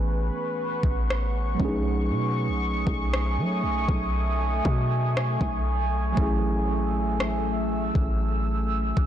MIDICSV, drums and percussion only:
0, 0, Header, 1, 2, 480
1, 0, Start_track
1, 0, Tempo, 1016949
1, 993, Time_signature, 4, 2, 24, 8
1, 4279, End_track
2, 0, Start_track
2, 0, Title_t, "Drums"
2, 393, Note_on_c, 9, 36, 90
2, 441, Note_off_c, 9, 36, 0
2, 521, Note_on_c, 9, 37, 100
2, 568, Note_off_c, 9, 37, 0
2, 754, Note_on_c, 9, 36, 102
2, 801, Note_off_c, 9, 36, 0
2, 1354, Note_on_c, 9, 36, 93
2, 1401, Note_off_c, 9, 36, 0
2, 1480, Note_on_c, 9, 37, 110
2, 1527, Note_off_c, 9, 37, 0
2, 1834, Note_on_c, 9, 36, 98
2, 1881, Note_off_c, 9, 36, 0
2, 2195, Note_on_c, 9, 36, 93
2, 2242, Note_off_c, 9, 36, 0
2, 2440, Note_on_c, 9, 37, 99
2, 2487, Note_off_c, 9, 37, 0
2, 2553, Note_on_c, 9, 36, 90
2, 2600, Note_off_c, 9, 36, 0
2, 2913, Note_on_c, 9, 36, 107
2, 2960, Note_off_c, 9, 36, 0
2, 3399, Note_on_c, 9, 37, 111
2, 3446, Note_off_c, 9, 37, 0
2, 3753, Note_on_c, 9, 36, 99
2, 3801, Note_off_c, 9, 36, 0
2, 4233, Note_on_c, 9, 36, 91
2, 4279, Note_off_c, 9, 36, 0
2, 4279, End_track
0, 0, End_of_file